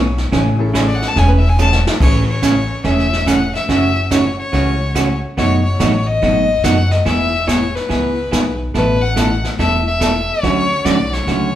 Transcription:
Already playing: B1
0.18 snare
0.32 A1 C#3 E3 A3 C#4 G#4, brush sweep, kick, snare
0.57 A3 C#4 E4 G#4 A4
0.73 C#3 E3 A3 C#4 G#4, kick, snare, hi-hat pedal
0.88 D5
0.95 F#5
1.02 snare
1.08 A5
1.16 E1 C#3 E3 A3 C#4 G#4 G#5, brush sweep, kick, snare
1.29 B4
1.39 E5
1.49 G#5
1.58 C#3 E3 A3 C#4 G#4 A5, hi-hat pedal
1.73 snare
1.87 snare
2.00 A1 C#3 E3 A3 C#4 G#4 C#5, brush sweep, kick, snare, crash
2.30 C#5
2.42 C#3 E3 A3 C#4 G#4, kick, snare, hi-hat pedal
2.84 E1 C#3 E3 A3 C#4 G#4 E5, brush sweep, kick, snare
2.99 snare
3.13 snare
3.26 C#3 E3 A3 C#4 G#4 F#5, kick, snare, hi-hat pedal
3.55 E5, snare
3.68 F#1 C#3 E3 A3 C#4 F#4 E5, brush sweep, kick, snare
4.11 C#3 E3 A3 C#4 F#4 C#5, kick, snare, hi-hat pedal
4.39 C#5
4.52 C#2 C#3 E3 A3 C#4 F#4, brush sweep, kick, snare
4.95 C#3 E3 A3 C#4 F#4, kick, snare, hi-hat pedal
5.37 F#1 B2 F#3 A3 D#4 F#4 C#5, brush sweep, kick, snare
5.65 C#5
5.79 A1 B2 F#3 A3 D#4 F#4, kick, snare, hi-hat pedal
6.07 D#5
6.22 G#1 B2 F#3 A3 D#4 F#4, brush sweep, kick, snare
6.64 F#1 B2 F#3 A3 D#4 F#4 F#5, kick, snare, hi-hat pedal
6.91 D#5, snare
7.05 E1 E3 B3 E4 G#4 E5, brush sweep, kick, snare
7.47 E3 B3 E4 G#4 C#5, kick, snare, hi-hat pedal
7.75 B4, snare
7.89 C#2 E3 B3 E4 G#4, brush sweep, kick, snare
8.31 B1 E3 B3 E4 G#4, kick, snare, hi-hat pedal
8.74 A1 B2 E3 A3 E4 A4 B4, brush sweep, kick, snare
9.02 F#5
9.16 B2 E3 A3 E4 A4, kick, snare, hi-hat pedal
9.44 snare
9.59 E1 B2 E3 A3 E4 A4 E5, brush sweep, kick, snare
9.88 E5
10.00 B2 E3 A3 E4 A4, kick, snare, hi-hat pedal
10.43 D2 D3 F#3 A3 C#4 F#4 C#5, brush sweep, kick, snare
10.85 B1 D3 F#3 A3 C#4 F#4 D5, kick, snare, hi-hat pedal
11.13 C#5, snare
11.27 C#2 D3 F#3 A3 C#4 F#4, brush sweep, kick, snare

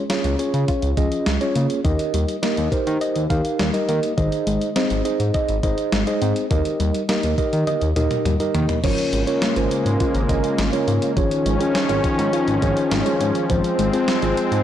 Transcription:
0.10 A#3 C#4 F4 G#4 C#5, snare, closed hi-hat
0.24 C#2, closed hi-hat
0.39 C#4 F4 G#4 C#5, closed hi-hat
0.54 C#3, closed hi-hat
0.68 F4, kick, closed hi-hat
0.82 C#2, closed hi-hat
0.97 C#2 F3 C#4 F4 G#4 D#5, kick, closed hi-hat
1.12 closed hi-hat
1.26 C#2 G#3, snare, closed hi-hat
1.41 C#4 F4 G#4 C#5, closed hi-hat
1.56 C#3 A#3, closed hi-hat
1.70 closed hi-hat
1.84 D#2 D#3 D#4 G4 A#4 D#5, kick, closed hi-hat
1.99 closed hi-hat
2.14 D#2 G3, closed hi-hat
2.28 closed hi-hat
2.43 A#3 D#4 G4 A#4 D#5, snare, closed hi-hat
2.57 D#2, closed hi-hat
2.72 D#4 G4 A#4 C5, kick, closed hi-hat
2.87 D#3, closed hi-hat
3.01 D#5, closed hi-hat
3.16 D#2, closed hi-hat
3.30 D#2 D#3 D#4 G4 A#4 F5, kick, closed hi-hat
3.45 closed hi-hat
3.59 D#2 G3, snare, closed hi-hat
3.74 D#4 G4 A#4 D#5, closed hi-hat
3.88 D#3 A#3, closed hi-hat
4.03 closed hi-hat
4.17 G#1 D#3 D#4 G#4 C5 D#5, kick, closed hi-hat
4.32 closed hi-hat
4.47 G#1 G#3, closed hi-hat
4.61 closed hi-hat
4.76 C4 D#4 G#4 C5 D#5, snare, closed hi-hat
4.90 G#1, closed hi-hat
5.05 D#4 G#4 C5 D#5, closed hi-hat
5.20 G#2, closed hi-hat
5.34 D#5, kick, closed hi-hat
5.49 G#1, closed hi-hat
5.63 G#1 D#3 D#4 G#4 C5 D#5, kick, closed hi-hat
5.78 closed hi-hat
5.92 G#1 G#3, snare, closed hi-hat
6.07 D#4 G#4 C5 D#5, closed hi-hat
6.22 G#2 C4, closed hi-hat
6.36 closed hi-hat
6.51 D#2 D#3 D#4 G4 A#4 D#5, kick, closed hi-hat
6.65 closed hi-hat
6.80 D#2 G3, closed hi-hat
6.95 closed hi-hat
7.09 A#3 D#4 G4 A#4 D#5, snare, closed hi-hat
7.23 D#2, closed hi-hat
7.38 D#4 G4 A#4 D#5, kick, closed hi-hat
7.53 D#3, closed hi-hat
7.67 D#5, closed hi-hat, high tom
7.81 D#2, closed hi-hat
7.96 D#2 D#3 D#4 G4 A#4 D#5, closed hi-hat, mid tom
8.11 closed hi-hat, mid tom
8.25 D#2 G3, closed hi-hat, mid tom
8.40 D#4 G4 A#4 D#5, closed hi-hat
8.55 D#3 A#3, closed hi-hat, floor tom
8.69 closed hi-hat, floor tom
8.84 G#1 C#3 F3 G#3 A#3 C#4 F4 A#4 C#5, kick, closed hi-hat, crash
8.98 closed hi-hat
9.13 G#1 G#3, closed hi-hat
9.27 C#4 F4 A#4 C#5, closed hi-hat
9.42 A#3, snare, closed hi-hat
9.56 G#1 C#4 F4 A#4 C5, closed hi-hat
9.71 closed hi-hat
9.86 G#2, closed hi-hat
10.00 F4, kick, closed hi-hat
10.15 G#1, closed hi-hat
10.29 G#1 F3 C#4 F4 A#4 D#5, kick, closed hi-hat
10.44 closed hi-hat
10.58 G#1 G#3, snare, closed hi-hat
10.73 C#4 F4 A#4 C#5, closed hi-hat
10.88 G#2 A#3, closed hi-hat
11.02 closed hi-hat
11.17 G#1 D#3 F3 C#4 F4 G#4 C#5, kick, closed hi-hat
11.31 closed hi-hat
11.46 G#1 G#3, closed hi-hat
11.60 C#4 F4 G#4 C#5, closed hi-hat
11.75 C#4, snare, closed hi-hat
11.89 G#1 C#4 F4 G#4 C#5, closed hi-hat
12.04 kick, closed hi-hat
12.19 G#2, closed hi-hat
12.33 F4, closed hi-hat
12.48 G#1, closed hi-hat
12.62 G#1 F3 C#4 F4 G#4 C#5, kick, closed hi-hat
12.77 closed hi-hat
12.91 G#1 G#3, snare, closed hi-hat
13.06 C#4 F4 G#4 C#5, closed hi-hat
13.21 G#2 C#4, closed hi-hat
13.35 closed hi-hat
13.49 G#1 F3 G#3 C4 F4 G#4 C5, kick, closed hi-hat
13.64 closed hi-hat
13.79 G#1 G#3, closed hi-hat
13.93 C4 F4 G#4 C5, closed hi-hat
14.08 C4, snare, closed hi-hat
14.22 G#1 C4 F4 G#4 C5, closed hi-hat
14.37 closed hi-hat
14.52 G#2, closed hi-hat

